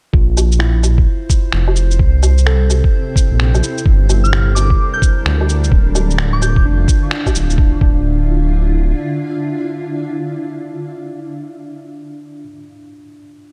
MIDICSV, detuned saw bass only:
0, 0, Header, 1, 2, 480
1, 0, Start_track
1, 0, Key_signature, -1, "minor"
1, 0, Tempo, 465116
1, 143, Time_signature, 4, 2, 24, 8
1, 13955, End_track
2, 0, Start_track
2, 0, Title_t, "Detuned saw bass"
2, 0, Program_c, 0, 39
2, 140, Note_on_c, 0, 34, 95
2, 1091, Note_off_c, 0, 34, 0
2, 1582, Note_on_c, 0, 29, 86
2, 2059, Note_on_c, 0, 36, 85
2, 2075, Note_off_c, 0, 29, 0
2, 2915, Note_off_c, 0, 36, 0
2, 3420, Note_on_c, 0, 34, 79
2, 3734, Note_off_c, 0, 34, 0
2, 3980, Note_on_c, 0, 31, 94
2, 4931, Note_off_c, 0, 31, 0
2, 5426, Note_on_c, 0, 38, 88
2, 5894, Note_off_c, 0, 38, 0
2, 5900, Note_on_c, 0, 26, 88
2, 6864, Note_on_c, 0, 29, 82
2, 6879, Note_off_c, 0, 26, 0
2, 7090, Note_off_c, 0, 29, 0
2, 7590, Note_on_c, 0, 26, 90
2, 7813, Note_off_c, 0, 26, 0
2, 7824, Note_on_c, 0, 26, 93
2, 7983, Note_off_c, 0, 26, 0
2, 8063, Note_on_c, 0, 26, 92
2, 9222, Note_off_c, 0, 26, 0
2, 13955, End_track
0, 0, End_of_file